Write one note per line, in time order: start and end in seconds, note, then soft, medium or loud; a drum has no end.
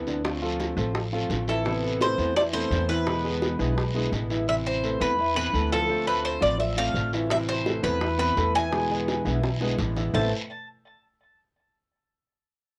0.00 0.71 D2 medium
0.00 0.23 E3 medium
0.00 0.24 B3 medium
0.00 0.24 C4 soft
0.00 0.25 E4 medium
0.07 0.36 D3 medium
0.07 0.36 D4 medium
0.07 0.36 D5 medium
0.07 high bongo soft
0.07 short guiro medium
0.24 0.76 D3 medium
0.24 0.79 A3 medium
0.24 0.78 C4 medium
0.24 0.76 F4 medium
0.24 high bongo medium
0.24 long guiro medium
0.42 0.71 F3 medium
0.42 0.71 F4 medium
0.42 0.71 A4 medium
0.42 high bongo soft
0.60 high bongo medium
0.60 short guiro medium
0.77 1.26 A1 medium
0.77 1.06 F3 medium
0.77 0.94 A3 medium
0.77 0.94 C4 medium
0.77 0.94 F4 medium
0.77 1.06 F4 medium
0.77 1.06 A4 medium
0.77 short guiro medium
0.95 muted steel-string acoustic guitar stroke medium
0.95 high bongo medium
0.95 long guiro medium
1.12 1.41 F3 medium
1.12 1.30 A3 medium
1.12 1.30 C4 medium
1.12 1.29 F4 medium
1.12 1.42 F4 medium
1.12 1.42 A4 medium
1.12 high bongo soft
1.29 2.12 A1 medium
1.29 1.65 D3 medium
1.29 1.65 A3 medium
1.29 1.65 C4 medium
1.29 1.66 F4 soft
1.29 high bongo soft
1.29 low bongo medium
1.29 short guiro medium
1.47 1.62 E3 medium
1.47 1.63 E4 loud
1.47 2.03 A4 medium
1.47 1.63 E5 medium
1.47 high bongo soft
1.47 short guiro medium
1.65 2.17 C3 medium
1.65 1.94 E3 medium
1.65 2.20 E3 medium
1.65 2.18 B3 medium
1.65 2.18 C4 medium
1.65 1.94 E4 medium
1.65 2.17 E4 medium
1.65 1.95 E5 medium
1.65 high bongo medium
1.65 long guiro medium
1.84 high bongo soft
2.01 2.30 A3 medium
2.01 2.30 A4 medium
2.01 2.36 C5 loud
2.01 2.30 B5 medium
2.01 high bongo medium
2.01 short guiro medium
2.18 2.67 E2 medium
2.18 2.34 E3 medium
2.18 2.35 B3 medium
2.18 2.35 C4 medium
2.18 2.35 E4 medium
2.18 short guiro medium
2.35 2.50 E3 medium
2.35 2.51 E4 medium
2.35 2.41 D5 loud
2.35 2.51 E5 medium
2.35 muted steel-string acoustic guitar stroke medium
2.35 high bongo medium
2.35 long guiro medium
2.53 2.69 E3 medium
2.53 2.83 A3 medium
2.53 2.71 B3 medium
2.53 2.71 C4 medium
2.53 2.70 E4 medium
2.53 2.83 A4 medium
2.53 2.89 C5 loud
2.53 2.83 B5 medium
2.53 high bongo soft
2.71 3.53 E2 medium
2.71 3.06 E3 medium
2.71 3.06 B3 medium
2.71 3.06 C4 medium
2.71 3.07 E4 medium
2.71 high bongo soft
2.71 low bongo medium
2.71 short guiro medium
2.89 3.18 E3 medium
2.89 3.18 E4 medium
2.89 4.09 B4 medium
2.89 3.18 E5 medium
2.89 high bongo soft
2.89 short guiro medium
3.07 3.59 B2 medium
3.07 3.59 D3 medium
3.07 3.59 G#3 medium
3.07 3.59 B3 medium
3.07 3.58 E4 medium
3.07 high bongo medium
3.07 long guiro medium
3.24 3.53 G#3 medium
3.24 3.53 G#4 medium
3.24 3.53 B4 medium
3.24 high bongo soft
3.42 high bongo medium
3.42 short guiro medium
3.59 4.09 B1 medium
3.59 3.76 D3 medium
3.59 3.88 G#3 medium
3.59 3.76 G#3 medium
3.59 3.77 B3 medium
3.59 3.76 E4 medium
3.59 3.89 G#4 medium
3.59 3.89 B4 medium
3.59 short guiro medium
3.77 muted steel-string acoustic guitar stroke medium
3.77 high bongo medium
3.77 long guiro medium
3.95 4.11 D3 medium
3.95 4.24 G#3 medium
3.95 4.12 G#3 medium
3.95 4.12 B3 medium
3.95 4.12 E4 medium
3.95 4.24 G#4 medium
3.95 4.24 B4 medium
3.95 high bongo soft
4.12 4.95 A1 medium
4.12 4.47 D3 soft
4.12 4.47 G#3 medium
4.12 4.48 B3 medium
4.12 4.48 E4 medium
4.12 high bongo soft
4.12 low bongo medium
4.12 short guiro medium
4.30 4.45 E3 medium
4.30 4.45 E4 medium
4.30 4.45 E5 medium
4.30 high bongo soft
4.30 short guiro medium
4.47 5.00 C3 medium
4.47 5.00 E3 medium
4.47 4.77 E3 medium
4.47 5.01 C4 medium
4.47 4.77 E4 medium
4.47 4.99 E4 medium
4.47 4.77 E5 medium
4.47 4.54 E5 loud
4.47 long guiro medium
4.67 4.99 C5 medium
4.83 5.12 A3 medium
4.83 5.12 A4 medium
4.83 5.13 B4 medium
4.83 short guiro medium
5.00 5.50 E2 medium
5.00 5.17 E3 medium
5.00 5.18 B3 medium
5.00 5.18 C4 medium
5.00 5.18 E4 medium
5.00 5.35 B4 medium
5.00 short guiro medium
5.18 5.48 E3 medium
5.18 5.48 E4 medium
5.18 5.48 E5 medium
5.18 muted steel-string acoustic guitar stroke medium
5.18 long guiro medium
5.35 5.51 E3 medium
5.35 5.53 B3 medium
5.35 5.52 C4 medium
5.35 5.52 E4 medium
5.35 5.69 B4 loud
5.52 6.36 D2 medium
5.52 5.87 E3 medium
5.52 5.68 A3 medium
5.52 5.89 B3 medium
5.52 5.88 C4 medium
5.52 5.89 E4 medium
5.52 5.69 A4 medium
5.52 5.69 B4 medium
5.52 short guiro medium
5.72 5.86 F3 medium
5.72 5.86 F4 medium
5.72 6.07 A4 loud
5.72 5.87 F5 medium
5.72 short guiro medium
5.88 6.41 D3 medium
5.88 6.43 A3 medium
5.88 6.04 A3 medium
5.88 6.42 C4 medium
5.88 6.39 F4 medium
5.88 6.04 A4 medium
5.88 6.04 C5 medium
5.88 long guiro medium
6.07 6.36 A3 medium
6.07 6.36 A4 medium
6.07 6.24 B4 medium
6.07 6.36 C5 medium
6.25 6.41 C5 medium
6.25 short guiro medium
6.41 6.91 A1 medium
6.41 6.71 F3 medium
6.41 6.58 A3 medium
6.41 6.58 C4 medium
6.41 6.58 F4 medium
6.41 6.72 F4 medium
6.41 6.59 D5 loud
6.41 6.72 F5 medium
6.41 short guiro medium
6.58 6.77 E5 medium
6.58 muted steel-string acoustic guitar stroke medium
6.58 long guiro medium
6.76 7.07 A3 medium
6.76 6.94 A3 medium
6.76 6.95 C4 medium
6.76 6.94 F4 medium
6.76 7.07 A4 medium
6.76 7.07 C5 medium
6.76 7.11 F5 loud
6.94 7.78 A1 medium
6.94 7.30 D3 medium
6.94 7.30 A3 medium
6.94 7.30 C4 medium
6.94 7.31 F4 medium
6.94 short guiro medium
7.13 7.28 E3 medium
7.13 7.28 E4 medium
7.13 7.28 E5 medium
7.13 short guiro medium
7.30 7.83 C3 medium
7.30 7.85 E3 medium
7.30 7.83 C4 medium
7.30 7.60 E4 medium
7.30 7.82 E4 medium
7.30 7.36 E5 loud
7.30 7.60 E5 medium
7.30 high bongo medium
7.30 long guiro medium
7.49 7.83 C5 loud
7.49 high bongo soft
7.66 7.95 A3 medium
7.66 7.95 A4 medium
7.66 7.96 B4 medium
7.66 high bongo medium
7.66 short guiro medium
7.83 8.33 E2 medium
7.83 7.99 E3 soft
7.83 7.99 B3 medium
7.83 7.99 C4 medium
7.83 8.00 E4 medium
7.83 8.18 B4 medium
7.83 short guiro medium
8.00 8.31 E3 medium
8.00 8.31 E4 medium
8.00 8.31 E5 medium
8.00 muted steel-string acoustic guitar stroke medium
8.00 high bongo medium
8.00 long guiro medium
8.18 8.34 E3 medium
8.18 8.36 B3 medium
8.18 8.35 C4 medium
8.18 8.35 E4 medium
8.18 8.52 B4 loud
8.18 high bongo soft
8.35 9.20 E2 medium
8.35 8.71 E3 medium
8.35 8.52 A3 medium
8.35 8.71 B3 medium
8.35 8.71 C4 soft
8.35 8.72 E4 medium
8.35 8.52 A4 medium
8.35 8.52 B4 medium
8.35 high bongo soft
8.35 low bongo medium
8.35 short guiro medium
8.55 8.69 E3 medium
8.55 8.70 E4 medium
8.55 8.70 E5 medium
8.55 9.75 G#5 loud
8.55 high bongo soft
8.55 short guiro medium
8.71 9.24 B2 medium
8.71 9.24 D3 medium
8.71 9.25 G#3 medium
8.71 8.87 G#3 medium
8.71 9.24 B3 medium
8.71 9.24 E4 medium
8.71 8.87 G#4 medium
8.71 8.87 B4 medium
8.71 high bongo medium
8.71 long guiro medium
8.90 9.19 G#3 medium
8.90 9.20 G#4 medium
8.90 9.20 B4 medium
8.90 high bongo soft
9.08 high bongo medium
9.08 short guiro medium
9.25 9.75 B1 medium
9.25 9.42 D3 medium
9.25 9.55 E3 medium
9.25 9.42 G#3 medium
9.25 9.42 B3 medium
9.25 9.42 E4 medium
9.25 9.55 E4 medium
9.25 9.55 E5 medium
9.25 short guiro medium
9.43 muted steel-string acoustic guitar stroke medium
9.43 high bongo loud
9.43 long guiro medium
9.60 9.76 D3 medium
9.60 9.90 G#3 medium
9.60 9.77 G#3 medium
9.60 9.78 B3 medium
9.60 9.78 E4 medium
9.60 9.91 G#4 medium
9.60 9.91 B4 medium
9.60 high bongo medium
9.78 10.10 A1 medium
9.78 10.13 D3 soft
9.78 10.13 G#3 medium
9.78 10.14 B3 medium
9.78 10.14 E4 medium
9.78 low bongo medium
9.78 short guiro medium
9.96 10.11 E3 medium
9.96 10.11 E4 medium
9.96 10.11 E5 medium
9.96 low bongo medium
9.96 short guiro medium
10.13 10.30 A1 loud
10.13 10.28 A2 medium
10.13 10.28 C3 medium
10.13 10.28 E3 medium
10.13 10.31 A3 loud
10.13 10.29 B3 medium
10.13 10.29 C4 medium
10.13 10.31 E4 medium
10.13 10.29 E4 medium
10.13 10.31 A4 medium
10.13 10.31 B4 medium
10.13 10.31 C5 medium
10.13 10.31 E5 medium
10.13 10.31 A5 medium
10.13 low bongo loud
10.13 long guiro loud